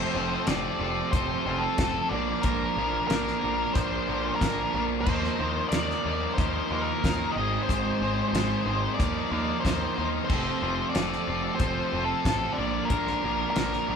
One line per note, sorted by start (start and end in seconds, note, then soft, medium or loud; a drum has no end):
0.00 0.15 F2 medium
0.00 0.16 C3 medium
0.00 0.13 F3 medium
0.00 0.17 A3 medium
0.00 0.12 C4 loud
0.00 0.14 F4 medium
0.00 0.13 A4 medium
0.00 0.47 C5 medium
0.13 0.35 F1 medium
0.13 0.46 F2 medium
0.13 0.47 C3 medium
0.13 0.46 F3 medium
0.13 0.45 C4 medium
0.13 0.47 F4 medium
0.13 0.47 A4 medium
0.18 0.48 F3 medium
0.18 0.48 A3 medium
0.18 0.48 C4 medium
0.46 0.68 F1 medium
0.46 0.80 F2 medium
0.46 0.80 C3 medium
0.46 0.78 F3 medium
0.46 0.81 A3 medium
0.46 0.79 C4 medium
0.46 0.80 F4 medium
0.46 0.80 A4 medium
0.46 1.11 D5 medium
0.46 snare loud
0.46 closed hi-hat medium
0.79 1.00 F1 medium
0.79 1.13 F2 medium
0.79 1.13 C3 medium
0.79 1.11 F3 medium
0.79 1.14 A3 medium
0.79 1.10 C4 medium
0.79 1.12 F4 medium
0.79 1.11 A4 medium
1.11 1.34 F1 medium
1.11 1.46 F2 medium
1.11 1.46 C3 medium
1.11 1.45 F3 medium
1.11 1.47 A3 medium
1.11 1.45 C4 medium
1.11 1.46 F4 medium
1.11 1.45 A4 loud
1.11 1.63 C5 medium
1.11 kick loud
1.11 closed hi-hat medium
1.15 1.47 F3 medium
1.15 1.47 C4 medium
1.46 1.67 F1 medium
1.46 1.78 F2 medium
1.46 1.78 C3 medium
1.46 1.77 F3 medium
1.46 1.79 A3 medium
1.46 1.77 C4 medium
1.46 1.79 F4 medium
1.46 1.79 A4 medium
1.59 2.12 A4 medium
1.78 1.99 F1 medium
1.78 2.10 F2 medium
1.78 2.10 C3 medium
1.78 2.11 F3 medium
1.78 2.11 A3 medium
1.78 2.10 C4 medium
1.78 2.11 F4 medium
1.78 2.10 A4 medium
1.78 kick medium
1.78 snare loud
1.78 closed hi-hat medium
2.09 2.32 A#1 medium
2.09 2.43 A#2 medium
2.09 2.42 D3 medium
2.09 2.44 F3 medium
2.09 2.44 A#3 medium
2.09 2.44 D4 medium
2.09 2.45 A#4 loud
2.09 2.41 D5 medium
2.42 2.65 A#1 medium
2.42 2.76 A#2 medium
2.42 2.76 D3 medium
2.42 2.77 F3 medium
2.42 2.78 A#3 medium
2.42 2.78 D4 loud
2.42 3.06 A#4 medium
2.42 2.78 A#4 loud
2.42 kick medium
2.42 closed hi-hat medium
2.77 2.97 A#1 medium
2.77 3.08 A#2 medium
2.77 3.09 D3 medium
2.77 3.10 F3 medium
2.77 3.11 A#3 medium
2.77 3.10 D4 medium
2.77 3.11 A#4 medium
3.08 3.31 A#1 medium
3.08 3.42 A#2 medium
3.08 3.42 D3 medium
3.08 3.43 F3 medium
3.08 3.43 A#3 medium
3.08 3.43 D4 medium
3.08 3.77 A#4 medium
3.08 snare loud
3.08 closed hi-hat medium
3.12 3.44 A#4 medium
3.27 snare soft
3.43 3.64 A#1 medium
3.43 3.74 A#2 medium
3.43 3.75 D3 medium
3.43 3.75 F3 medium
3.43 3.76 A#3 medium
3.43 3.76 D4 medium
3.43 3.77 A#4 medium
3.73 3.96 A#1 medium
3.73 4.07 A#2 medium
3.73 4.07 D3 medium
3.73 4.07 F3 loud
3.73 4.07 A#3 medium
3.73 4.42 C5 medium
3.73 kick loud
3.73 closed hi-hat medium
3.77 4.08 D4 loud
3.77 4.08 A#4 loud
4.08 4.29 A#1 medium
4.08 4.39 A#2 medium
4.08 4.40 D3 medium
4.08 4.40 F3 medium
4.08 4.41 A#3 medium
4.08 4.41 D4 medium
4.08 4.41 A#4 medium
4.35 4.84 A#4 loud
4.41 4.62 A#1 medium
4.41 4.73 A#2 medium
4.41 4.74 D3 medium
4.41 4.74 F3 medium
4.41 4.74 A#3 medium
4.41 4.75 D4 medium
4.41 4.75 A#4 medium
4.41 kick medium
4.41 snare loud
4.41 closed hi-hat medium
4.74 5.07 A#1 medium
4.74 5.05 A#2 medium
4.74 5.05 D3 medium
4.74 5.05 F3 medium
4.74 5.06 A#3 medium
4.74 5.06 D4 medium
4.74 5.06 A#4 medium
5.01 5.65 C5 loud
5.06 5.27 D#2 medium
5.06 5.38 D#3 loud
5.06 5.39 F3 loud
5.06 5.40 A#3 loud
5.06 5.40 D#4 loud
5.06 5.40 A#4 loud
5.06 kick loud
5.06 crash medium
5.24 snare soft
5.39 5.60 D#2 medium
5.39 5.71 D#3 medium
5.39 5.72 F3 medium
5.39 5.72 A#3 medium
5.39 5.73 D#4 medium
5.39 5.73 A#4 medium
5.69 5.92 D#2 medium
5.69 6.05 D#3 medium
5.69 6.34 D5 medium
5.69 snare loud
5.69 closed hi-hat medium
5.73 6.05 F3 medium
5.73 6.05 A#3 medium
5.73 6.07 D#4 medium
5.73 6.06 A#4 medium
5.90 snare soft
6.05 6.26 D#2 medium
6.05 6.37 D#3 medium
6.05 6.38 F3 medium
6.05 6.38 A#3 medium
6.05 6.38 D#4 medium
6.05 6.39 A#4 medium
6.34 6.58 D#2 medium
6.34 6.86 C5 medium
6.38 6.70 D#3 medium
6.38 6.70 F3 loud
6.38 6.71 A#3 loud
6.38 6.71 D#4 medium
6.38 6.72 A#4 medium
6.38 kick loud
6.38 closed hi-hat medium
6.71 6.91 D#2 medium
6.71 7.02 D#3 medium
6.71 7.03 F3 medium
6.71 7.03 A#3 medium
6.71 7.04 D#4 loud
6.71 7.05 A#4 medium
6.81 7.35 A#4 medium
7.04 7.24 D#2 medium
7.04 7.34 D#3 medium
7.04 7.34 F3 medium
7.04 7.34 A#3 medium
7.04 7.35 D#4 medium
7.04 7.35 A#4 medium
7.04 kick medium
7.04 snare loud
7.04 closed hi-hat medium
7.32 7.62 D#5 loud
7.36 7.56 G#1 medium
7.36 7.67 G#2 medium
7.36 7.68 D#3 medium
7.36 7.68 G#3 medium
7.36 7.69 C4 medium
7.36 7.69 D#4 medium
7.36 7.69 G#4 loud
7.63 8.27 C5 loud
7.68 7.89 G#1 medium
7.68 8.00 G#2 medium
7.68 8.01 D#3 medium
7.68 8.01 G#3 medium
7.68 8.01 C4 medium
7.68 8.02 D#4 loud
7.68 8.02 G#4 loud
7.68 kick loud
7.68 closed hi-hat medium
8.00 8.21 G#1 medium
8.00 8.32 G#2 medium
8.00 8.33 D#3 medium
8.00 8.33 G#3 medium
8.00 8.33 C4 medium
8.00 8.34 D#4 medium
8.00 8.35 G#4 medium
8.28 8.92 C5 medium
8.33 8.54 G#1 medium
8.33 8.65 G#2 medium
8.33 8.66 D#3 medium
8.33 8.66 G#3 medium
8.33 8.67 C4 medium
8.33 8.68 D#4 medium
8.33 8.68 G#4 medium
8.33 snare loud
8.33 closed hi-hat medium
8.66 8.86 G#1 medium
8.66 8.97 G#2 medium
8.66 8.97 D#3 medium
8.66 8.97 G#3 medium
8.66 8.98 C4 medium
8.66 8.98 D#4 medium
8.66 8.98 G#4 medium
8.94 9.58 D5 loud
8.99 9.20 D#2 medium
8.99 9.31 D#3 medium
8.99 9.32 F3 medium
8.99 9.31 A#3 medium
8.99 9.32 D#4 medium
8.99 9.33 A#4 medium
8.99 kick loud
8.99 closed hi-hat medium
9.31 9.52 D#2 medium
9.31 9.63 D#3 medium
9.31 9.63 F3 medium
9.31 9.63 A#3 medium
9.31 9.64 D#4 medium
9.31 9.64 A#4 medium
9.60 9.96 D#3 medium
9.60 9.97 F3 medium
9.60 10.08 C5 medium
9.65 9.85 D#2 medium
9.65 9.96 A#3 medium
9.65 9.97 D#4 medium
9.65 9.98 A#4 medium
9.65 kick medium
9.65 snare loud
9.65 closed hi-hat medium
9.97 10.18 D#2 medium
9.97 10.27 D#3 medium
9.97 10.28 F3 medium
9.97 10.28 A#3 medium
9.97 10.28 D#4 medium
9.97 10.29 A#4 medium
10.25 10.62 F3 medium
10.25 10.62 C4 medium
10.25 10.89 C5 medium
10.29 10.50 F1 medium
10.29 10.61 F2 medium
10.29 10.61 C3 loud
10.29 10.63 A3 medium
10.29 10.63 F4 medium
10.29 10.63 A4 loud
10.29 kick loud
10.29 crash medium
10.62 10.82 F1 medium
10.62 10.94 F2 medium
10.62 10.94 C3 medium
10.62 10.94 F3 medium
10.62 10.95 A3 medium
10.62 10.94 C4 medium
10.62 10.94 F4 medium
10.62 10.94 A4 medium
10.90 11.55 D5 medium
10.94 11.15 F1 medium
10.94 11.28 F2 medium
10.94 11.28 C3 medium
10.94 11.26 F3 medium
10.94 11.29 A3 medium
10.94 11.26 C4 medium
10.94 11.27 F4 medium
10.94 11.27 A4 medium
10.94 snare loud
10.94 closed hi-hat medium
11.12 snare soft
11.27 11.48 F1 medium
11.27 11.59 F2 medium
11.27 11.60 C3 medium
11.27 11.60 F3 medium
11.27 11.61 A3 medium
11.27 11.60 C4 medium
11.27 11.61 F4 medium
11.27 11.60 A4 medium
11.55 12.03 C5 medium
11.60 11.80 F1 medium
11.60 11.92 F2 medium
11.60 11.92 C3 medium
11.60 11.92 F3 loud
11.60 11.93 A3 loud
11.60 11.93 C4 loud
11.60 11.93 F4 loud
11.60 11.93 A4 loud
11.60 kick loud
11.60 closed hi-hat medium
11.92 12.13 F1 medium
11.92 12.24 F2 medium
11.92 12.25 C3 medium
11.92 12.24 F3 medium
11.92 12.26 A3 medium
11.92 12.24 C4 medium
11.92 12.25 F4 medium
11.92 12.25 A4 medium
12.05 12.57 A4 medium
12.25 12.45 A1 medium
12.25 12.56 F2 medium
12.25 12.56 C3 medium
12.25 12.58 F3 medium
12.25 12.57 A3 medium
12.25 12.56 C4 medium
12.25 12.59 F4 medium
12.25 12.56 A4 medium
12.25 kick medium
12.25 snare loud
12.25 closed hi-hat medium
12.53 12.89 D5 medium
12.57 12.79 A#1 medium
12.57 12.89 A#2 medium
12.57 12.89 D3 medium
12.57 12.90 F3 medium
12.57 12.90 A#3 medium
12.57 12.90 D4 medium
12.57 12.91 A#4 medium
12.85 13.49 A#4 medium
12.90 13.11 A#1 medium
12.90 13.22 A#2 medium
12.90 13.22 D3 medium
12.90 13.24 F3 loud
12.90 13.24 A#3 loud
12.90 13.23 D4 loud
12.90 13.24 A#4 loud
12.90 kick loud
12.90 closed hi-hat medium
13.07 snare soft
13.23 13.44 A#1 medium
13.23 13.55 A#2 medium
13.23 13.56 D3 medium
13.23 13.57 F3 medium
13.23 13.57 A#3 medium
13.23 13.57 D4 medium
13.23 13.58 A#4 medium
13.50 13.96 A#4 medium
13.56 13.76 A#1 medium
13.56 13.87 A#2 medium
13.56 13.88 D3 medium
13.56 13.88 F3 medium
13.56 13.89 A#3 medium
13.56 13.89 D4 medium
13.56 13.90 A#4 medium
13.56 snare loud
13.56 closed hi-hat medium
13.73 snare soft
13.88 13.96 A#1 medium
13.88 13.96 A#2 medium
13.88 13.96 D3 medium
13.88 13.96 F3 medium
13.88 13.96 A#3 medium
13.88 13.96 D4 medium
13.88 13.96 A#4 medium